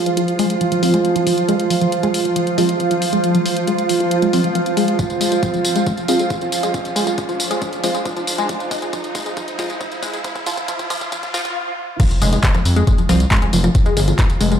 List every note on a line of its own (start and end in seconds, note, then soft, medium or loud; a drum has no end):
0.00 11.56 F3 medium
0.00 11.56 F4 medium
0.00 11.56 C5 medium
0.00 11.56 F5 medium
0.00 riser medium
0.06 0.09 F3 medium
0.06 closed hi-hat medium
0.17 0.20 F3 medium
0.17 closed hi-hat medium
0.28 closed hi-hat medium
0.39 0.47 G#3 loud
0.39 open hi-hat loud
0.50 closed hi-hat medium
0.61 0.64 F3 medium
0.61 closed hi-hat medium
0.72 0.75 F3 medium
0.72 closed hi-hat medium
0.83 0.93 F3 medium
0.83 0.93 C4 medium
0.83 0.93 F4 loud
0.83 open hi-hat loud
0.94 1.01 G#3 loud
0.94 closed hi-hat medium
1.05 closed hi-hat medium
1.16 1.19 F3 medium
1.16 closed hi-hat medium
1.27 1.30 F3 medium
1.27 open hi-hat loud
1.38 closed hi-hat medium
1.49 1.56 G#3 loud
1.49 closed hi-hat medium
1.60 closed hi-hat medium
1.70 1.74 F3 medium
1.70 open hi-hat loud
1.81 1.84 F3 medium
1.81 closed hi-hat medium
1.92 closed hi-hat medium
2.03 2.11 G#3 loud
2.03 closed hi-hat medium
2.14 open hi-hat loud
2.25 2.28 F3 medium
2.25 closed hi-hat medium
2.36 2.39 F3 medium
2.36 closed hi-hat medium
2.47 closed hi-hat medium
2.58 2.68 F3 medium
2.58 2.66 G#3 loud
2.58 2.68 C4 medium
2.58 2.68 F4 loud
2.58 open hi-hat loud
2.69 closed hi-hat medium
2.80 2.83 F3 medium
2.80 closed hi-hat medium
2.91 2.94 F3 medium
2.91 closed hi-hat medium
3.02 open hi-hat loud
3.13 3.20 G#3 loud
3.13 closed hi-hat medium
3.24 closed hi-hat medium
3.35 3.38 F3 medium
3.35 closed hi-hat medium
3.46 3.49 F3 medium
3.46 open hi-hat loud
3.57 closed hi-hat medium
3.67 3.75 G#3 loud
3.67 closed hi-hat medium
3.78 closed hi-hat medium
3.89 3.93 F3 medium
3.89 open hi-hat loud
4.00 4.03 F3 medium
4.00 closed hi-hat soft
4.11 closed hi-hat medium
4.22 4.30 G#3 loud
4.22 closed hi-hat medium
4.33 4.40 F3 medium
4.33 4.40 C4 medium
4.33 4.40 F4 loud
4.33 open hi-hat loud
4.44 4.47 F3 medium
4.44 closed hi-hat medium
4.55 4.58 F3 medium
4.55 closed hi-hat medium
4.66 closed hi-hat medium
4.77 4.85 G#3 loud
4.77 open hi-hat loud
4.88 closed hi-hat medium
4.99 5.02 F3 medium
4.99 kick loud
4.99 closed hi-hat medium
4.99 tambourine soft
5.10 closed hi-hat medium
5.10 tambourine soft
5.21 5.28 G#3 medium
5.21 open hi-hat loud
5.21 tambourine medium
5.32 5.35 G#3 medium
5.32 closed hi-hat medium
5.32 tambourine soft
5.43 5.46 F3 medium
5.43 kick loud
5.43 closed hi-hat medium
5.43 tambourine soft
5.54 5.57 F3 medium
5.54 closed hi-hat soft
5.54 tambourine soft
5.65 open hi-hat loud
5.65 tambourine medium
5.76 5.83 G#3 medium
5.76 closed hi-hat soft
5.76 tambourine soft
5.87 5.90 F3 medium
5.87 kick loud
5.87 closed hi-hat medium
5.87 tambourine soft
5.97 closed hi-hat soft
5.97 tambourine soft
6.08 6.19 F3 medium
6.08 6.16 G#3 medium
6.08 6.19 C4 medium
6.08 6.19 F4 loud
6.08 open hi-hat loud
6.08 tambourine medium
6.19 6.22 G#3 medium
6.19 closed hi-hat medium
6.19 tambourine soft
6.30 6.33 F3 medium
6.30 kick loud
6.30 closed hi-hat medium
6.30 tambourine soft
6.41 6.44 F3 medium
6.41 closed hi-hat medium
6.41 tambourine soft
6.52 open hi-hat loud
6.52 tambourine medium
6.63 6.71 G#3 loud
6.63 closed hi-hat soft
6.63 tambourine soft
6.74 6.77 F3 medium
6.74 kick loud
6.74 closed hi-hat medium
6.74 tambourine soft
6.85 closed hi-hat medium
6.85 tambourine soft
6.96 7.04 G#3 loud
6.96 open hi-hat loud
6.96 tambourine medium
7.07 7.10 G#3 medium
7.07 closed hi-hat soft
7.07 tambourine soft
7.18 7.21 F3 medium
7.18 kick loud
7.18 closed hi-hat medium
7.18 tambourine soft
7.29 7.32 F3 medium
7.29 closed hi-hat medium
7.29 tambourine soft
7.40 open hi-hat loud
7.40 tambourine medium
7.51 7.58 G#3 loud
7.51 closed hi-hat soft
7.51 tambourine soft
7.62 7.65 F3 medium
7.62 kick loud
7.62 closed hi-hat medium
7.62 tambourine soft
7.73 closed hi-hat medium
7.73 tambourine soft
7.84 7.94 F3 medium
7.84 7.91 G#3 loud
7.84 7.94 C4 medium
7.84 7.94 F4 loud
7.84 open hi-hat loud
7.84 tambourine medium
7.95 7.98 G#3 medium
7.95 closed hi-hat medium
7.95 tambourine soft
8.05 8.09 F3 medium
8.05 kick loud
8.05 closed hi-hat medium
8.05 tambourine soft
8.17 8.20 F3 medium
8.17 closed hi-hat soft
8.17 tambourine soft
8.27 open hi-hat loud
8.27 tambourine medium
8.38 8.46 G#3 loud
8.38 closed hi-hat soft
8.38 tambourine soft
8.49 8.52 F3 medium
8.49 kick loud
8.49 closed hi-hat medium
8.49 tambourine soft
8.60 closed hi-hat medium
8.60 tambourine soft
8.71 8.79 G#3 loud
8.71 kick loud
8.71 open hi-hat loud
8.71 tambourine medium
8.82 8.85 G#3 medium
8.82 closed hi-hat medium
8.82 tambourine soft
8.93 8.96 F3 medium
8.93 kick loud
8.93 closed hi-hat medium
8.93 tambourine soft
9.04 closed hi-hat medium
9.04 tambourine soft
9.15 9.23 G#3 loud
9.15 kick loud
9.15 open hi-hat loud
9.15 tambourine medium
9.26 9.29 G#3 medium
9.26 closed hi-hat medium
9.26 tambourine soft
9.37 9.40 F3 medium
9.37 kick loud
9.37 closed hi-hat medium
9.37 tambourine soft
9.48 closed hi-hat medium
9.48 tambourine soft
9.59 9.69 F3 medium
9.59 9.66 G#3 loud
9.59 9.69 C4 medium
9.59 9.69 F4 loud
9.59 kick loud
9.59 open hi-hat loud
9.59 tambourine medium
9.70 9.73 G#3 medium
9.70 closed hi-hat medium
9.70 tambourine soft
9.81 9.84 F3 medium
9.81 kick loud
9.81 closed hi-hat medium
9.81 tambourine soft
9.92 closed hi-hat medium
9.92 tambourine soft
10.03 10.10 G#3 loud
10.03 kick loud
10.03 open hi-hat loud
10.03 tambourine medium
10.13 10.17 G#3 medium
10.13 closed hi-hat medium
10.13 tambourine soft
10.24 10.28 F3 medium
10.24 kick loud
10.24 closed hi-hat medium
10.24 tambourine soft
10.35 kick loud
10.35 closed hi-hat medium
10.35 tambourine soft
10.46 10.49 F3 medium
10.46 kick loud
10.46 open hi-hat loud
10.46 tambourine medium
10.57 kick medium
10.57 closed hi-hat medium
10.57 tambourine soft
10.68 10.71 F3 medium
10.68 kick loud
10.68 closed hi-hat medium
10.68 tambourine soft
10.79 kick medium
10.79 closed hi-hat medium
10.79 tambourine soft
10.90 10.93 F3 medium
10.90 kick loud
10.90 open hi-hat loud
10.90 tambourine medium
11.01 kick medium
11.01 closed hi-hat medium
11.01 tambourine soft
11.12 11.15 F3 medium
11.12 kick loud
11.12 closed hi-hat medium
11.12 tambourine soft
11.12 swell medium
11.23 kick medium
11.23 closed hi-hat medium
11.23 tambourine soft
11.34 11.41 F3 medium
11.34 11.37 F3 medium
11.34 11.41 C4 medium
11.34 11.41 F4 loud
11.34 kick loud
11.34 open hi-hat loud
11.34 tambourine medium
11.45 kick medium
11.45 closed hi-hat medium
11.45 tambourine soft
12.00 14.60 F3 medium
12.00 12.03 F3 medium
12.00 14.60 F4 medium
12.00 kick loud
12.00 cross-stick medium
12.00 closed hi-hat medium
12.00 crash loud
12.00 tambourine soft
12.00 impact medium
12.11 closed hi-hat medium
12.11 tambourine soft
12.22 12.38 F1 loud
12.22 12.29 G#3 loud
12.22 open hi-hat loud
12.22 tambourine medium
12.33 12.36 G#3 medium
12.33 closed hi-hat medium
12.33 tambourine soft
12.44 12.47 F3 medium
12.44 kick loud
12.44 clap loud
12.44 closed hi-hat medium
12.44 tambourine soft
12.54 12.58 F3 medium
12.54 cross-stick medium
12.54 closed hi-hat medium
12.54 tambourine soft
12.65 12.82 F2 medium
12.65 open hi-hat loud
12.65 tambourine medium
12.76 12.84 G#3 loud
12.76 closed hi-hat medium
12.76 tambourine soft
12.87 12.90 G#3 medium
12.87 kick loud
12.87 closed hi-hat medium
12.87 tambourine soft
12.98 13.01 F3 medium
12.98 closed hi-hat medium
12.98 tambourine soft
13.09 13.25 C2 medium
13.09 13.20 F3 medium
13.09 13.12 F3 medium
13.09 13.20 C4 medium
13.09 13.20 F4 loud
13.09 cross-stick medium
13.09 open hi-hat loud
13.09 tambourine medium
13.20 closed hi-hat medium
13.20 tambourine soft
13.31 13.39 G#3 loud
13.31 kick loud
13.31 clap loud
13.31 closed hi-hat medium
13.31 tambourine soft
13.37 closed hi-hat medium
13.42 13.45 G#3 medium
13.42 closed hi-hat medium
13.42 tambourine soft
13.53 13.69 F1 medium
13.53 13.56 F3 medium
13.53 open hi-hat loud
13.53 tambourine medium
13.64 13.67 F3 medium
13.64 cross-stick medium
13.64 closed hi-hat medium
13.64 tambourine soft
13.75 kick loud
13.75 closed hi-hat medium
13.75 tambourine soft
13.86 13.93 G#3 loud
13.86 closed hi-hat medium
13.86 tambourine soft
13.97 14.13 G1 medium
13.97 14.00 G#3 medium
13.97 open hi-hat loud
13.97 tambourine medium
14.08 14.11 F3 medium
14.08 closed hi-hat medium
14.08 tambourine soft
14.19 14.22 F3 medium
14.19 kick loud
14.19 cross-stick medium
14.19 clap loud
14.19 closed hi-hat medium
14.19 tambourine soft
14.30 closed hi-hat medium
14.30 tambourine soft
14.41 14.57 F1 loud
14.41 14.48 G#3 loud
14.41 open hi-hat loud
14.41 tambourine medium
14.52 14.55 G#3 medium
14.52 closed hi-hat medium
14.52 tambourine soft